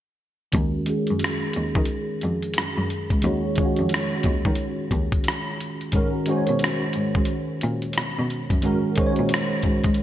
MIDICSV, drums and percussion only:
0, 0, Header, 1, 2, 480
1, 0, Start_track
1, 0, Key_signature, -6, "minor"
1, 0, Tempo, 674157
1, 381, Time_signature, 4, 2, 24, 8
1, 7141, End_track
2, 0, Start_track
2, 0, Title_t, "Drums"
2, 373, Note_on_c, 9, 42, 72
2, 381, Note_on_c, 9, 36, 80
2, 444, Note_off_c, 9, 42, 0
2, 452, Note_off_c, 9, 36, 0
2, 613, Note_on_c, 9, 42, 57
2, 684, Note_off_c, 9, 42, 0
2, 761, Note_on_c, 9, 42, 28
2, 832, Note_off_c, 9, 42, 0
2, 850, Note_on_c, 9, 42, 70
2, 885, Note_on_c, 9, 37, 90
2, 921, Note_off_c, 9, 42, 0
2, 957, Note_off_c, 9, 37, 0
2, 1092, Note_on_c, 9, 42, 53
2, 1163, Note_off_c, 9, 42, 0
2, 1248, Note_on_c, 9, 36, 76
2, 1319, Note_off_c, 9, 36, 0
2, 1320, Note_on_c, 9, 42, 62
2, 1391, Note_off_c, 9, 42, 0
2, 1576, Note_on_c, 9, 42, 49
2, 1647, Note_off_c, 9, 42, 0
2, 1726, Note_on_c, 9, 42, 29
2, 1798, Note_off_c, 9, 42, 0
2, 1806, Note_on_c, 9, 42, 73
2, 1837, Note_on_c, 9, 37, 82
2, 1877, Note_off_c, 9, 42, 0
2, 1909, Note_off_c, 9, 37, 0
2, 2066, Note_on_c, 9, 42, 47
2, 2137, Note_off_c, 9, 42, 0
2, 2209, Note_on_c, 9, 36, 81
2, 2213, Note_on_c, 9, 42, 28
2, 2281, Note_off_c, 9, 36, 0
2, 2284, Note_off_c, 9, 42, 0
2, 2292, Note_on_c, 9, 42, 79
2, 2364, Note_off_c, 9, 42, 0
2, 2531, Note_on_c, 9, 42, 61
2, 2549, Note_on_c, 9, 36, 68
2, 2602, Note_off_c, 9, 42, 0
2, 2620, Note_off_c, 9, 36, 0
2, 2680, Note_on_c, 9, 42, 28
2, 2752, Note_off_c, 9, 42, 0
2, 2771, Note_on_c, 9, 42, 73
2, 2807, Note_on_c, 9, 37, 97
2, 2843, Note_off_c, 9, 42, 0
2, 2878, Note_off_c, 9, 37, 0
2, 3014, Note_on_c, 9, 42, 58
2, 3020, Note_on_c, 9, 36, 82
2, 3085, Note_off_c, 9, 42, 0
2, 3091, Note_off_c, 9, 36, 0
2, 3169, Note_on_c, 9, 36, 74
2, 3240, Note_off_c, 9, 36, 0
2, 3242, Note_on_c, 9, 42, 64
2, 3314, Note_off_c, 9, 42, 0
2, 3495, Note_on_c, 9, 36, 74
2, 3499, Note_on_c, 9, 42, 52
2, 3567, Note_off_c, 9, 36, 0
2, 3570, Note_off_c, 9, 42, 0
2, 3647, Note_on_c, 9, 36, 78
2, 3648, Note_on_c, 9, 42, 30
2, 3718, Note_off_c, 9, 36, 0
2, 3720, Note_off_c, 9, 42, 0
2, 3730, Note_on_c, 9, 42, 68
2, 3762, Note_on_c, 9, 37, 78
2, 3801, Note_off_c, 9, 42, 0
2, 3833, Note_off_c, 9, 37, 0
2, 3991, Note_on_c, 9, 42, 50
2, 4062, Note_off_c, 9, 42, 0
2, 4137, Note_on_c, 9, 42, 28
2, 4208, Note_off_c, 9, 42, 0
2, 4215, Note_on_c, 9, 42, 74
2, 4223, Note_on_c, 9, 36, 77
2, 4287, Note_off_c, 9, 42, 0
2, 4294, Note_off_c, 9, 36, 0
2, 4455, Note_on_c, 9, 42, 59
2, 4527, Note_off_c, 9, 42, 0
2, 4605, Note_on_c, 9, 42, 29
2, 4676, Note_off_c, 9, 42, 0
2, 4693, Note_on_c, 9, 42, 67
2, 4728, Note_on_c, 9, 37, 86
2, 4764, Note_off_c, 9, 42, 0
2, 4799, Note_off_c, 9, 37, 0
2, 4935, Note_on_c, 9, 42, 52
2, 5006, Note_off_c, 9, 42, 0
2, 5091, Note_on_c, 9, 36, 77
2, 5162, Note_off_c, 9, 36, 0
2, 5164, Note_on_c, 9, 42, 68
2, 5235, Note_off_c, 9, 42, 0
2, 5420, Note_on_c, 9, 42, 54
2, 5491, Note_off_c, 9, 42, 0
2, 5568, Note_on_c, 9, 42, 30
2, 5639, Note_off_c, 9, 42, 0
2, 5647, Note_on_c, 9, 42, 80
2, 5679, Note_on_c, 9, 37, 79
2, 5719, Note_off_c, 9, 42, 0
2, 5750, Note_off_c, 9, 37, 0
2, 5911, Note_on_c, 9, 42, 47
2, 5982, Note_off_c, 9, 42, 0
2, 6053, Note_on_c, 9, 36, 83
2, 6057, Note_on_c, 9, 42, 27
2, 6124, Note_off_c, 9, 36, 0
2, 6128, Note_off_c, 9, 42, 0
2, 6138, Note_on_c, 9, 42, 72
2, 6209, Note_off_c, 9, 42, 0
2, 6377, Note_on_c, 9, 42, 62
2, 6391, Note_on_c, 9, 36, 75
2, 6448, Note_off_c, 9, 42, 0
2, 6463, Note_off_c, 9, 36, 0
2, 6523, Note_on_c, 9, 42, 30
2, 6594, Note_off_c, 9, 42, 0
2, 6614, Note_on_c, 9, 42, 71
2, 6650, Note_on_c, 9, 37, 101
2, 6686, Note_off_c, 9, 42, 0
2, 6721, Note_off_c, 9, 37, 0
2, 6853, Note_on_c, 9, 42, 56
2, 6860, Note_on_c, 9, 36, 77
2, 6924, Note_off_c, 9, 42, 0
2, 6931, Note_off_c, 9, 36, 0
2, 7003, Note_on_c, 9, 42, 32
2, 7009, Note_on_c, 9, 36, 79
2, 7074, Note_off_c, 9, 42, 0
2, 7079, Note_on_c, 9, 42, 61
2, 7080, Note_off_c, 9, 36, 0
2, 7141, Note_off_c, 9, 42, 0
2, 7141, End_track
0, 0, End_of_file